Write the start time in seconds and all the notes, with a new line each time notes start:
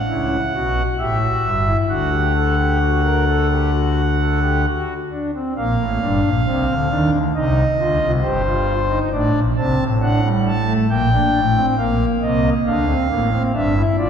Already playing: F#5
0.09 C#2 C#3 E4
0.54 B1 B2 F#4
0.99 A1 A2 G4 E5
1.22 F#4
1.44 G1 G2
1.67 E4
1.89 D2 D3 F#4 F#5
2.13 G4
2.35 A4
2.59 G4
2.81 F#4
3.04 A#4
3.28 A4
3.51 G4
3.73 F#4
4.20 A4
4.42 G4
4.66 F#4
5.11 D4
5.34 C4
5.57 A#1 A#2 A#3 F5
5.79 A1 A2
6.01 G1 G2 D4
6.24 A#1 A#2
6.46 C2 C3 C4
6.69 D2 D3
6.90 D#2 D#3 D4
7.13 D2 D3
7.35 C2 C3 D#4 D#5
7.79 D2 D3 F4
8.01 C2 C3
8.22 G1 G2 G4 C5
8.44 F4
8.90 D#4
9.12 A1 A2 D4 D5
9.34 A#1 A#2
9.56 C2 C3 C4 A5
9.78 A1 A2
10.01 D4 F#5
10.24 G3
10.45 A5
10.67 A3
10.90 A#1 A#2 A#3 G5
11.12 D4
11.34 A1 A2
11.55 C4
11.77 A#1 A#2 A#3 F5
12.21 C2 C3 D#5
12.66 D2 D3 D4 F5
12.88 C4
13.10 A1 A2 A#3
13.32 C4
13.54 G1 G2 D4 E5
13.76 E4
13.98 A1 A2 F4 D5